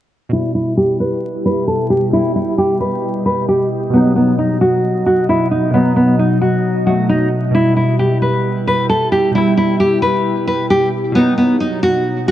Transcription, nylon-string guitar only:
0.33 E4
0.55 E4
0.77 G4
1.00 B4
1.45 B4
1.68 A4
1.90 G4
2.13 E4
2.36 E4
2.58 G4
2.80 B4
3.26 B4
3.48 G4
3.93 B3
4.16 B3
4.39 D#4
4.61 F#4
5.06 F#4
5.29 E4
5.51 D#4
5.74 B3
5.96 B3
6.19 D#4
6.41 F#4
6.87 F#4
7.09 D#4
7.55 E4
7.77 E4
7.99 G4
8.22 B4
8.67 B4
8.89 A4
9.12 G4
9.35 E4
9.57 E4
9.80 G4
10.02 B4
10.47 B4
10.70 G4
11.15 B3
11.38 B3
11.60 D#4
11.83 F#4
12.28 F#4

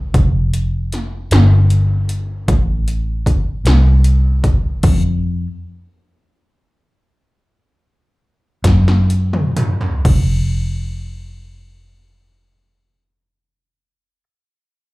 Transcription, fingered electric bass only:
Already playing: C2
0.14 F1
1.32 G1
2.48 A1
3.65 C2
4.83 F2
8.64 F#2
10.05 F1

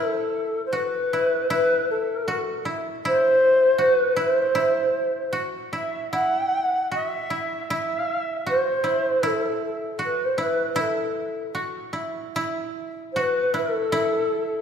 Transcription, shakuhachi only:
Already playing: A4
0.66 C5
0.72 B4
1.50 B4
1.90 A4
3.06 C5
3.81 B4
4.18 C5
5.73 E5
6.11 F#5
6.94 E5
7.72 E5
8.48 C5
9.25 A4
9.65 A4
10.03 B4
10.24 C5
10.41 B4
10.72 B4
10.79 A4
13.12 C5
13.18 B4
13.58 A4

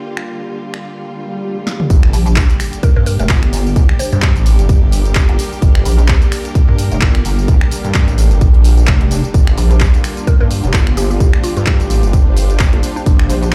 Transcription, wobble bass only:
2.13 A#1
2.96 G2
3.19 F1
3.30 G1
3.53 G1
5.29 G1
5.85 A#1
6.68 G2
6.92 F1
7.02 G1
7.25 G1
8.88 F1
9.58 A#1
10.40 G2
10.64 F1
10.74 G1
10.97 G1
12.73 G1
13.30 A#1

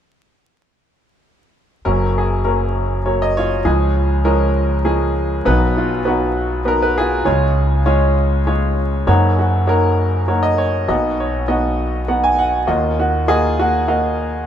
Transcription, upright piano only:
1.85 F#1 F#2 F#3 A#3 C#4 A#4
2.18 G#4
2.44 F#3 A#3 C#4 A#4
3.06 F#3 A#3 C#4 C#5
3.22 D#5
3.37 F4 C#5
3.65 C#2 C#3 F3 G#3 C#4 G#4
4.25 F3 G#3 C#4 A#4
4.85 F3 G#3 C#4 G#4
5.45 B1 B2 F#3 B3 D#4 B4
5.77 F4
6.05 F#3 B3 D#4 F#4 B4
6.65 F#3 B3 D#4 A#4 B4
6.82 B4
6.98 F4 G#4
7.25 C#2 C#3 G#3 C#4 F4 C#5
7.86 G#3 C#4 F4 C#5
8.47 G#3 C#4 F4 C#5
9.07 F#1 F#2 A#3 D#4 F#4 C#5
9.39 F#4
9.67 A#3 D#4 F#4 A#4 C#5
10.28 A#3 D#4 F#4 C#5
10.43 D#5
10.58 C#5
10.88 B1 B2 B3 D#4 F#4 D#5
11.20 C#5
11.48 B3 D#4 F#4 D#5
12.08 B3 D#4 F#4 F#5
12.24 G#5
12.39 F#5
12.67 D#2 D#3 A#3 F4 F#4 D#5
12.99 F#4
13.28 A#3 F4 F#4 G#4 D#5
13.60 A#3 F#4
13.88 A#3 F#4 D#5 F5

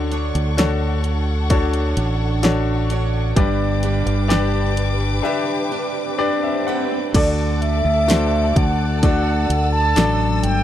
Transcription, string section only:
Already playing: D4 A4 F#5 C#6
3.37 G4 B4 D6
7.14 A4 D5 A5 D6
9.02 E6

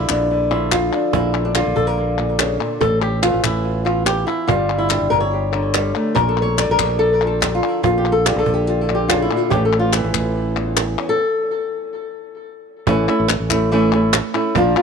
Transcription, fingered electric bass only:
0.09 A#1
1.14 A#1
1.67 A#1
1.77 A#1
2.82 A1
3.34 A1
3.44 A1
4.49 G1
5.01 G1
5.12 G1
6.17 A#1
6.69 A#1
6.80 A#1
7.84 A#1
8.36 A#1
8.47 A#1
9.52 A1
10.04 A1
10.15 A1
12.88 A1
13.20 A1
13.40 A1
14.55 A#1

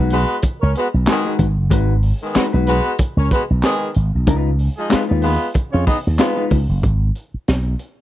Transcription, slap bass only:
0.00 B1
0.63 C#2
0.94 B1
1.39 G#1
1.58 F#1
1.71 G#1
2.36 muted slap bass stroke
2.54 B1
3.17 C#2
3.50 B1
3.96 G#1
4.15 B1
4.28 C#2
4.93 muted slap bass stroke
5.11 D#2
5.74 F2
6.07 D#2
6.51 C#2
6.69 F#1
6.84 G#1
7.34 muted slap bass stroke
7.48 B1

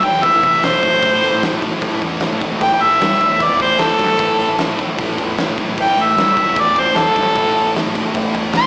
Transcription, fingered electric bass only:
0.13 E2
0.33 E2
0.44 C3
0.64 B2
0.83 A2
1.03 A2
1.34 A2
1.53 A2
1.82 A2
2.02 E2
2.32 A2
2.51 A2
2.81 A2
3.01 G3
3.31 E2
3.51 E2
3.81 E2
4.00 G2
4.19 A2
4.48 A2
4.67 A2
4.99 A2
5.18 E2
5.49 A2
5.69 A2
5.97 A2
6.16 G3
6.47 E2
6.66 E2
6.95 E2
7.17 G2
7.36 A2
7.66 A2
7.86 A2
8.15 A2
8.35 E2

